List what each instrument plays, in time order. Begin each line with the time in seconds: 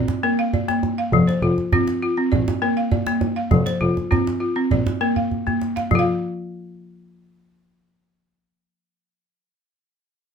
Already playing: balafon D5
0.08 djembe slap, djembe tone
0.23 balafon A#3 A#4
0.39 balafon F5
0.53 balafon D5, djembe bass
0.68 balafon A#3, djembe slap
0.83 djembe slap, djembe tone
0.98 balafon F5
1.13 double bass F1, balafon F3, djembe bass
1.27 balafon C5, djembe slap
1.43 double bass F1, balafon F4, djembe slap
1.58 djembe tone
1.72 balafon C4 F4, djembe slap, djembe bass
1.87 djembe slap
2.03 balafon F4
2.17 balafon C4
2.32 double bass A#1, balafon D5, djembe bass
2.48 djembe slap, djembe tone
2.62 balafon A#3 A#4
2.77 balafon F5
2.91 balafon D5, djembe bass
3.07 balafon A#3, djembe slap
3.21 djembe slap, djembe tone
3.36 balafon F5
3.51 double bass F1, balafon F3, djembe slap, djembe bass
3.66 balafon C5, djembe slap
3.81 double bass F1, balafon F4
3.97 djembe tone
4.11 balafon C4 F4, djembe slap, djembe bass
4.27 djembe slap
4.40 balafon F4
4.56 balafon C4
4.71 double bass A#1, balafon D5, djembe slap, djembe bass
4.87 djembe slap, djembe tone
5.01 balafon A#3 A#4
5.16 balafon F5, djembe bass
5.31 djembe bass
5.47 balafon A#3, djembe bass
5.61 djembe slap
5.76 balafon F5, djembe slap
5.91 double bass F1, balafon F3, djembe bass
5.95 balafon F4 F5